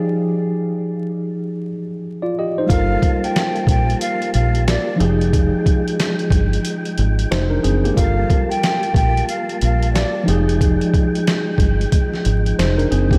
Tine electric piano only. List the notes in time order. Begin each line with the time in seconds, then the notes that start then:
Already playing: F3 D#4 G4 G#4
2.22 F4 D5
2.39 G4 D#5
2.58 D#4 C5
2.66 G3 F4
2.71 A4 A#4
4.96 F3 D#4
5.00 G4 G#4
7.31 D#4 C5
7.50 D4 A#4
7.63 C4 G#4
7.85 A#3 G4
7.94 G3 F4
7.98 A4 A#4
10.23 F3 D#4
10.28 G4 G#4
12.59 D#4 C5
12.78 D4 A#4
12.91 C4 G#4
13.12 A#3 G4